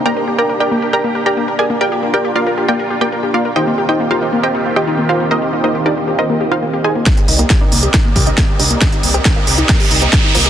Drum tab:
HH |----------------|----------------|----------------|----------------|
SD |----------------|----------------|----------------|----------------|
BD |----------------|----------------|----------------|----------------|

HH |xxoxx-oxx-oxx-ox|xxoxx-oxxooxx-ox|
SD |o---o---o---o---|o---o---o---o---|
BD |o---o---o-o-o---|o---o---o---o---|